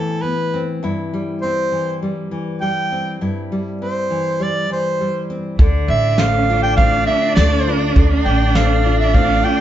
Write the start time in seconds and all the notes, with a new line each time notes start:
Already playing: A2 E3 B3 C4 E4 A4
0.22 B3 B4
0.54 C4
0.83 G2 E4
1.14 G3
1.42 C4 C5
1.72 E3
2.03 G3
2.31 E3
2.61 G3 G5
2.92 C4
3.21 G2 E4
3.52 G3
3.81 C4 C5
4.10 E3
4.40 G3 D5
4.70 E3 C5
5.01 G3
5.30 C4
5.58 D2 D3 D4, kick
5.88 A1 E5
6.18 A3 C4 F5, snare
6.50 F4
6.63 G5
6.77 A2 C4 F5, kick
7.07 F4 E5
7.35 D2 A3 D5, snare
7.68 F4
7.96 D2 D3, kick
8.25 A1 G5
8.55 A3 C4 F5, snare
8.86 F4
8.99 E5
9.14 A2 C4 F5, kick
9.44 F4 G5